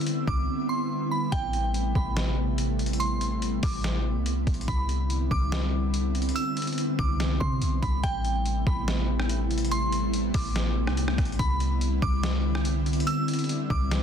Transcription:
Already playing: D3 G3 B3 C4 E4 E6
0.01 closed hi-hat
0.07 closed hi-hat
0.28 C2 D6, kick
0.69 C6
1.11 B5
1.32 A1 C3 G3 A3 G5, kick, closed hi-hat
1.53 closed hi-hat
1.74 closed hi-hat
1.95 A1 B5, kick
2.16 snare, closed hi-hat
2.58 closed hi-hat
2.79 closed hi-hat
2.86 closed hi-hat
2.93 closed hi-hat
3.00 C6, closed hi-hat
3.21 closed hi-hat
3.42 closed hi-hat
3.63 A1 D6, kick, open hi-hat
3.84 snare, closed hi-hat
4.16 C2
4.26 closed hi-hat
4.47 A1, kick, closed hi-hat
4.54 closed hi-hat
4.61 closed hi-hat
4.68 C2 D3 B3 C4 E4 B5, kick, closed hi-hat
4.89 closed hi-hat
5.10 closed hi-hat
5.31 C2 D6, kick
5.52 snare, closed hi-hat
5.94 closed hi-hat
6.15 closed hi-hat
6.22 closed hi-hat
6.29 closed hi-hat
6.36 E6, closed hi-hat
6.57 closed hi-hat
6.62 closed hi-hat
6.67 closed hi-hat
6.73 closed hi-hat
6.78 closed hi-hat
6.99 C2 D6, kick
7.20 snare, closed hi-hat
7.40 C3 C6, kick
7.62 B1, closed hi-hat
7.82 C2 B5, kick, closed hi-hat
8.03 A1 C3 G3 A3 B3 E4 G5, kick, closed hi-hat
8.25 closed hi-hat
8.46 closed hi-hat
8.67 A1 B5, kick
8.88 snare, closed hi-hat
9.20 cross-stick
9.29 closed hi-hat
9.51 closed hi-hat
9.58 closed hi-hat
9.65 closed hi-hat
9.71 C6, closed hi-hat
9.92 closed hi-hat
10.13 closed hi-hat
10.34 A1 D6, kick, open hi-hat
10.56 snare, closed hi-hat
10.87 C2, cross-stick
10.97 closed hi-hat
11.08 cross-stick
11.18 A1, kick, cross-stick, closed hi-hat
11.25 closed hi-hat
11.32 closed hi-hat
11.39 C2 D3 C4 E4 B5, kick, closed hi-hat
11.60 closed hi-hat
11.81 closed hi-hat
12.02 C2 D6, kick
12.23 snare, closed hi-hat
12.55 cross-stick
12.65 closed hi-hat
12.86 closed hi-hat
12.93 closed hi-hat
13.00 closed hi-hat
13.07 E6, closed hi-hat
13.28 closed hi-hat
13.33 closed hi-hat
13.39 closed hi-hat
13.44 closed hi-hat
13.49 closed hi-hat
13.70 C2 D6, kick
13.91 snare, closed hi-hat

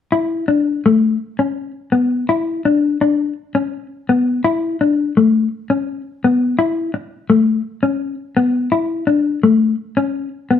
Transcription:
0.12 E4
0.48 D4
0.86 A3
1.39 C#4
1.92 B3
2.29 E4
2.65 D4
3.01 D4
3.55 C#4
4.09 B3
4.45 E4
4.81 D4
5.17 A3
5.70 C#4
6.24 B3
6.59 E4
6.94 muted clean electric guitar stroke
7.30 A3
7.83 C#4
8.37 B3
8.72 E4
9.07 D4
9.43 A3
9.97 C#4
10.51 B3

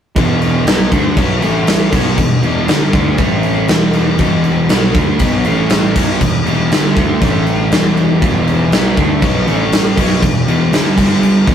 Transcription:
0.16 E1 E2 B2 E3, kick, crash
0.42 crash
0.66 B1 B2 F#3 B3, snare, crash
0.92 D2 D3 A3 D4, kick, crash
1.17 B1 B2 F#3 B3, kick, crash
1.42 A1 A2 E3 A3, crash
1.67 snare, crash
1.92 B1 B2 F#3 B3, kick, crash
2.18 E1 E2 B2, kick, crash
2.43 E1 E2 B2 E3, crash
2.68 G1 G2 D3 G3, snare, crash
2.93 D2 D3 A3 D4, kick, crash
3.18 A1 A2 E3 A3, kick, crash
3.43 crash
3.68 E1 E2 B2 E3, snare, crash
3.93 crash
4.18 E1 E2 B2 E3, kick, crash
4.44 crash
4.69 B1 B2 F#3 B3, snare, crash
4.94 D2 D3 A3 D4, kick, crash
5.19 B1 B2 F#3 B3, kick, crash
5.45 A1 A2 E3 A3, crash
5.70 snare, crash
5.95 B1 B2 F#3 B3, kick, crash
6.21 E1 E2 B2, kick, crash
6.46 E1 E2 B2 E3, crash
6.71 G1 G2 D3 G3, snare, crash
6.96 D2 D3 A3 D4, kick, crash
7.21 A1 A2 E3 A3, kick, crash
7.47 crash
7.71 E1 E2 B2 E3, snare, crash
7.97 crash
8.22 E1 E2 B2 E3, kick, crash
8.47 crash
8.72 B1 B2 F#3 B3, snare, crash
8.97 D2 D3 A3 D4, kick, crash
9.22 B1 B2 F#3 B3, kick, crash
9.47 A1 A2 E3 A3, crash
9.72 snare, crash
9.97 B1 B2 F#3 B3, kick, crash
10.22 E1 E2 B2, kick, crash
10.47 E1 E2 B2 E3, crash
10.72 G1 G2 D3 G3, snare, crash
10.98 G1 G2 D3 G3, kick, crash
11.23 crash
11.47 E1 E2 B2 E3, kick, crash

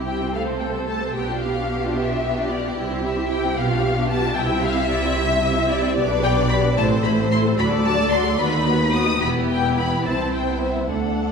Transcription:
Already playing: C2 C3 G4
0.06 E4 G4 G5
0.21 C4 E4
0.34 A3 A4 F5
0.48 C4 C5
0.59 A3 A4 G5
0.75 C4 C5
0.87 A3 A4 A5
1.01 C4 C5
1.14 B1 B2 B3 G4 G5
1.29 D4 F4
1.41 B3 G4 F5
1.58 D4 F4
1.70 B3 G4
1.82 D4 F4
1.95 B3 G4 E5
2.08 D4 F4
2.23 B3 G4
2.36 D4 F4
2.49 B3 G4 D5
2.63 D4 F4
2.76 C2 C3 E4 G4
2.89 C4 E4
3.02 E4 G4 E5
3.16 C4 E4
3.29 E4 G4 G5
3.44 C4 E4
3.56 B1 B2 B3 G4 F5
3.69 D4 F4
3.81 B3 G4
3.96 D4 F4
4.09 B3 G4 A5
4.23 D4 F4
4.36 C2 C3 E4 G4 E5 G5
4.50 C4 E4
4.62 E4 G4 F5
4.76 C4 E4
4.88 E4 G4 D5
5.02 C4 E4
5.15 E4 G4 E5
5.29 C4 E4
5.43 E4 G4
5.55 C4 E4
5.70 E4 G4 D5
5.83 C4 E4
5.95 B1 B2 B3 G4 D5
6.10 D4 B4
6.22 B3 G4 G5
6.35 D4 B4
6.49 B3 G4 B5
6.62 D4 B4
6.76 A1 A2 A3 E4 C5 A5
6.89 C4 A4
7.04 A3 E4 B5
7.17 C4 A4
7.31 A3 E4 C6
7.44 C4 A4
7.58 D2 F#3 F#4 D5 B5
7.71 A3 A4
7.85 F#3 F#4 A5
7.98 A3 A4
8.12 F#3 F#4 C6
8.26 A3 A4
8.38 D#2 B3 F#4 B4 B5
8.52 A3 D#4
8.67 B3 F#4
8.80 A3 D#4
8.93 B3 F#4 D#6
9.07 A3 D#4
9.20 E1 E2 B3 E4 G4 B5
9.49 G5
9.77 B5
10.04 C2 C4 E4 C5 A5
10.34 G5
10.48 B3
10.63 E5
10.91 D2 A3 D4 A4 F#5

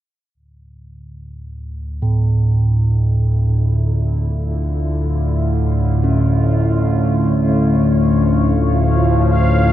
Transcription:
0.35 D2 A2 D3
1.12 E4
2.00 A2 F4
3.23 C#5
6.04 C#4
8.10 F3 F5

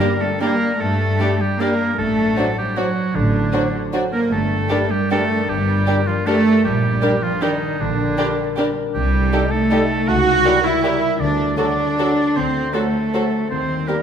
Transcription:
Already playing: G2 G3 A#3 D4 A#4
0.00 G3 D4 G4 D5
0.20 A3 G4 A4
0.39 G3 A#3 D4 G4 A#4 D5
0.61 D4
0.79 G2 A3 A4
0.99 G3
1.19 G3 D4 G4 D5
1.39 G3 G4
1.60 G3 A#3 D4 G4 A#4 D5
1.80 D4
1.98 A1 A2 A3 A4
2.17 F#3
2.37 F#3 D4 F#4 C5 D5
2.57 G3 F#4 G4
2.76 F#3 D4 F#4 C5 D5
2.97 D4
3.14 A1 A2 D3 D4
3.34 F#3
3.52 F#3 D4 F#4 C5 D5
3.74 F#4
3.91 F#3 D4 F#4 C5 D5
3.95 D4 F#4
4.12 A#3 D4 A#4
4.31 G1 G2 A3 A4
4.51 G3
4.69 G3 D4 G4 A#4 D5
4.91 G3 G4
5.11 G3 A3 D4 G4 A4 A#4 D5
5.31 D4
5.48 G1 G2 G3 G4
5.68 G3
5.87 G3 D4 G4 A#4 D5
6.07 F3 F4 G4
6.26 G3 A3 D4 G4 A4 A#4 D5
6.46 D4
6.64 A#1 A#2 G3 G4
6.83 G3
7.01 G3 D4 G4 A#4 D5
7.22 F3 F4 G4
7.41 D#3 G3 D4 D#4 G4 A#4 D5
7.62 D4
7.80 A#1 A#2 D3 D4
7.99 G3
8.17 G3 D4 G4 A#4 D5
8.38 G4
8.57 G3 D4 G4 A#4 D5
8.77 D4
8.94 C2 C3 G3 G4
9.13 A3
9.31 G3 D#4 G4 A4 D#5
9.51 A3 D#4 A4
9.70 G3 D#4 G4 A4 D#5
9.89 D#4
10.08 C#2 C#3 F#4 F#5
10.25 G3
10.44 G3 E4 G4 A#4 C#5
10.64 E4 G4 E5
10.83 G3 E4 G4 A#4 C#5
11.02 E4
11.20 D2 D3 D4 D5
11.38 A3
11.57 F#3 D4 F#4 A4 D5
11.79 F#4
11.98 F#3 F#4 A4 D5
12.19 F#4
12.36 D2 D3 C4 C5
12.55 A3
12.74 F#3 A3 F#4 A4 C5
12.94 A4
13.12 F#3 F#4 A4 C5
13.33 F#4
13.50 D#2 D#3 C4 C5
13.69 G3
13.87 G3 A#3 G4 A#4

